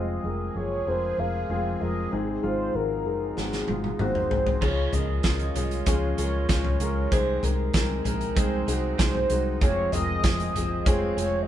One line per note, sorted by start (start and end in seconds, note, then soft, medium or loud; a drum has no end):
0.00 0.18 F1 medium
0.00 4.59 C3 medium
0.00 2.10 F3 medium
0.00 0.24 G#3 medium
0.00 0.25 C4 medium
0.00 0.25 F4 medium
0.00 0.57 G#4 medium
0.00 2.10 G#4 medium
0.00 0.58 D#5 medium
0.24 0.49 F1 medium
0.24 0.51 G#3 medium
0.24 0.52 C4 medium
0.24 0.52 F4 medium
0.24 0.52 A#4 medium
0.55 0.81 F#1 medium
0.55 0.83 G#3 medium
0.55 0.83 C4 medium
0.55 0.83 F4 soft
0.55 0.83 G#4 medium
0.55 0.90 C#5 loud
0.87 1.12 F1 medium
0.87 1.14 G#3 medium
0.87 1.14 C4 medium
0.87 1.15 F4 medium
0.87 1.15 A#4 medium
0.87 1.21 C5 medium
1.18 1.44 F1 medium
1.18 1.46 G#3 medium
1.18 1.46 C4 medium
1.18 1.46 F4 medium
1.18 1.46 A#4 medium
1.18 1.81 F5 loud
1.49 1.75 F1 medium
1.49 1.77 G#3 medium
1.49 1.77 C4 medium
1.49 1.77 F4 medium
1.49 1.77 G#4 medium
1.80 2.07 F1 medium
1.80 2.08 G#3 medium
1.80 2.08 C4 medium
1.80 2.08 F4 medium
1.80 2.08 A#4 medium
1.80 2.10 D#5 medium
2.12 2.38 G#1 medium
2.12 3.02 G#2 medium
2.12 4.60 G#3 medium
2.12 2.39 G#3 medium
2.12 2.40 C4 medium
2.12 4.60 D#4 medium
2.12 2.39 D#4 medium
2.12 2.40 G#4 medium
2.12 2.28 G#4 medium
2.42 2.69 G#1 medium
2.42 2.70 G#3 medium
2.42 2.71 C4 medium
2.42 2.71 D#4 medium
2.42 2.71 F4 medium
2.42 2.77 C5 medium
2.74 3.06 G#1 medium
2.74 3.02 G#3 medium
2.74 3.01 C4 soft
2.74 3.02 D#4 medium
2.74 3.02 F#4 medium
2.74 3.41 A#4 medium
3.05 3.31 F#1 medium
3.05 3.33 G#3 medium
3.05 3.33 C4 medium
3.05 3.33 D#4 soft
3.05 3.33 G#4 medium
3.37 3.63 G#1 medium
3.37 3.64 G#3 medium
3.37 3.64 C4 medium
3.37 3.64 D#4 medium
3.37 3.65 F#4 medium
3.37 4.00 G#4 medium
3.37 snare soft
3.52 snare soft
3.68 3.94 G#1 medium
3.68 3.96 G#3 medium
3.68 3.96 C4 medium
3.68 3.96 D#4 soft
3.68 3.96 F4 medium
3.68 high tom medium
3.84 high tom medium
3.99 4.25 G#1 medium
3.99 4.27 G#3 medium
3.99 4.27 C4 medium
3.99 4.27 D#4 medium
3.99 4.28 F#4 medium
3.99 4.65 C5 medium
3.99 mid tom medium
4.15 mid tom medium
4.30 4.57 G#1 medium
4.30 4.58 G#3 medium
4.30 4.58 C4 medium
4.30 4.58 D#4 medium
4.30 4.58 G#4 medium
4.30 floor tom medium
4.47 floor tom medium
4.61 4.87 C#2 medium
4.61 5.22 C#3 medium
4.61 5.52 C#3 medium
4.61 5.23 F3 medium
4.61 5.24 G#3 medium
4.61 4.90 G#3 medium
4.61 9.58 G#3 medium
4.61 7.10 C#4 medium
4.61 5.23 C#4 medium
4.61 4.90 C#4 medium
4.61 4.90 F4 medium
4.61 7.10 F4 medium
4.61 5.24 F4 medium
4.61 4.90 G#4 medium
4.61 4.95 C#5 loud
4.61 kick medium
4.61 crash medium
4.93 5.19 C#2 medium
4.93 5.21 G#3 medium
4.93 5.21 C#4 medium
4.93 5.21 F4 soft
4.93 5.21 A#4 medium
4.93 5.89 D#5 loud
4.93 closed hi-hat medium
4.93 floor tom medium
5.23 5.50 C#2 medium
5.23 5.55 C#3 medium
5.23 5.56 F3 medium
5.23 5.52 G#3 medium
5.23 5.55 G#3 medium
5.23 5.52 C#4 medium
5.23 5.54 C#4 medium
5.23 5.52 F4 medium
5.23 5.53 F4 medium
5.23 5.52 A#4 medium
5.23 kick medium
5.23 snare loud
5.23 closed hi-hat medium
5.39 closed hi-hat soft
5.54 5.81 C2 medium
5.54 5.83 G#3 medium
5.54 5.86 G#3 soft
5.54 5.86 C#4 medium
5.54 5.84 C#4 medium
5.54 5.86 F4 medium
5.54 5.84 F4 soft
5.54 5.84 G#4 medium
5.54 closed hi-hat medium
5.54 floor tom medium
5.71 closed hi-hat soft
5.86 6.12 C#2 medium
5.86 6.18 F3 medium
5.86 6.18 G#3 medium
5.86 6.14 G#3 medium
5.86 6.15 C#4 medium
5.86 6.17 C#4 medium
5.86 6.15 F4 medium
5.86 6.16 F4 medium
5.86 6.15 G#4 loud
5.86 6.18 C#5 medium
5.86 kick loud
5.86 closed hi-hat medium
6.17 6.44 C#2 medium
6.17 6.46 G#3 medium
6.17 6.48 G#3 soft
6.17 6.49 C#4 soft
6.17 6.46 C#4 medium
6.17 6.49 F4 soft
6.17 6.46 F4 medium
6.17 6.46 A#4 medium
6.17 6.47 C#5 medium
6.17 closed hi-hat medium
6.49 6.75 C#2 medium
6.49 7.11 C#3 medium
6.49 7.11 F3 medium
6.49 7.11 G#3 medium
6.49 6.77 G#3 medium
6.49 7.12 C#4 medium
6.49 6.77 C#4 medium
6.49 7.12 F4 medium
6.49 6.78 F4 medium
6.49 6.78 G#4 medium
6.49 7.14 C#5 medium
6.49 kick loud
6.49 snare medium
6.49 closed hi-hat medium
6.65 floor tom medium
6.80 7.06 C#2 medium
6.80 7.08 G#3 medium
6.80 7.08 C#4 medium
6.80 7.08 F4 medium
6.80 7.08 A#4 medium
6.80 closed hi-hat medium
7.11 7.38 C2 medium
7.11 7.72 C3 medium
7.11 8.02 C3 medium
7.11 9.60 C3 medium
7.11 7.73 D#3 medium
7.11 7.74 G#3 medium
7.11 7.40 G#3 medium
7.11 7.74 C4 medium
7.11 7.40 C4 medium
7.11 9.59 D#4 medium
7.11 7.40 D#4 medium
7.11 7.74 G#4 loud
7.11 7.40 G#4 medium
7.11 7.45 C5 medium
7.11 kick medium
7.11 closed hi-hat medium
7.43 7.69 C2 medium
7.43 7.71 G#3 medium
7.43 7.71 C4 soft
7.43 7.71 D#4 medium
7.43 7.71 G#4 medium
7.43 8.39 A#4 medium
7.43 closed hi-hat medium
7.43 floor tom medium
7.74 8.00 C2 loud
7.74 8.05 C3 medium
7.74 8.05 D#3 medium
7.74 8.05 G#3 medium
7.74 8.02 G#3 medium
7.74 8.04 C4 medium
7.74 8.02 C4 medium
7.74 8.02 D#4 soft
7.74 8.03 G#4 medium
7.74 8.02 G#4 medium
7.74 kick loud
7.74 snare loud
7.74 closed hi-hat medium
8.04 8.31 A#1 medium
8.04 8.33 G#3 medium
8.04 8.35 G#3 medium
8.04 8.36 C4 soft
8.04 8.33 C4 soft
8.04 8.33 D#4 soft
8.04 8.36 G#4 medium
8.04 8.33 A#4 medium
8.04 closed hi-hat medium
8.04 floor tom medium
8.21 closed hi-hat soft
8.35 8.62 C2 medium
8.35 8.67 D#3 medium
8.35 8.67 G#3 medium
8.35 8.64 G#3 medium
8.35 8.67 C4 medium
8.35 8.64 C4 medium
8.35 8.65 D#4 medium
8.35 8.66 G#4 medium
8.35 8.65 G#4 medium
8.35 8.99 C5 medium
8.35 kick loud
8.35 closed hi-hat medium
8.67 8.93 C2 medium
8.67 8.95 G#3 medium
8.67 8.98 G#3 soft
8.67 8.98 C4 soft
8.67 8.95 C4 medium
8.67 8.96 D#4 medium
8.67 8.96 F#4 medium
8.67 8.98 G#4 medium
8.67 closed hi-hat medium
8.98 9.25 C2 medium
8.98 9.60 C3 medium
8.98 9.61 D#3 loud
8.98 9.61 G#3 medium
8.98 9.27 G#3 medium
8.98 9.61 C4 loud
8.98 9.27 C4 medium
8.98 9.27 D#4 medium
8.98 9.62 G#4 loud
8.98 9.27 G#4 medium
8.98 9.58 C5 medium
8.98 kick loud
8.98 snare medium
8.98 closed hi-hat medium
9.15 floor tom medium
9.30 9.56 C2 medium
9.30 9.58 G#3 medium
9.30 9.58 C4 medium
9.30 9.58 D#4 medium
9.30 9.58 F#4 medium
9.30 closed hi-hat medium
9.61 9.87 F1 medium
9.61 10.22 F2 medium
9.61 10.23 C3 medium
9.61 11.48 C3 medium
9.61 11.48 F3 medium
9.61 10.24 F3 medium
9.61 10.23 G#3 medium
9.61 9.89 G#3 medium
9.61 10.24 C4 medium
9.61 9.89 C4 medium
9.61 9.90 F4 medium
9.61 11.48 G#4 medium
9.61 10.24 G#4 medium
9.61 9.90 G#4 medium
9.61 9.91 C#5 loud
9.61 kick medium
9.61 closed hi-hat medium
9.92 10.18 F1 loud
9.92 10.20 G#3 medium
9.92 10.20 C4 medium
9.92 10.21 F4 medium
9.92 10.21 A#4 medium
9.92 10.89 D#5 loud
9.92 closed hi-hat medium
9.92 floor tom medium
10.23 10.49 F1 loud
10.23 10.55 F2 medium
10.23 10.55 C3 medium
10.23 10.55 F3 medium
10.23 10.55 G#3 medium
10.23 10.52 G#3 medium
10.23 10.54 C4 medium
10.23 10.52 C4 medium
10.23 10.52 F4 medium
10.23 10.53 G#4 loud
10.23 10.52 G#4 medium
10.23 kick loud
10.23 snare loud
10.23 closed hi-hat medium
10.40 closed hi-hat soft
10.54 10.80 F#1 medium
10.54 10.84 F3 soft
10.54 10.85 G#3 soft
10.54 10.83 G#3 medium
10.54 10.85 C4 medium
10.54 10.83 C4 medium
10.54 10.83 F4 medium
10.54 10.86 G#4 medium
10.54 10.83 G#4 medium
10.54 closed hi-hat medium
10.54 floor tom medium
10.85 11.12 F1 medium
10.85 11.17 F3 medium
10.85 11.17 G#3 medium
10.85 11.14 G#3 medium
10.85 11.16 C4 medium
10.85 11.14 C4 medium
10.85 11.14 F4 medium
10.85 11.16 G#4 medium
10.85 11.15 G#4 loud
10.85 11.17 C#5 medium
10.85 kick loud
10.85 closed hi-hat medium
11.17 11.43 F1 medium
11.17 11.47 F3 soft
11.17 11.45 G#3 medium
11.17 11.48 G#3 soft
11.17 11.48 C4 medium
11.17 11.45 C4 medium
11.17 11.45 F4 medium
11.17 11.48 G#4 medium
11.17 11.46 G#4 medium
11.17 11.40 C#5 medium
11.17 closed hi-hat medium
11.43 11.48 D#5 medium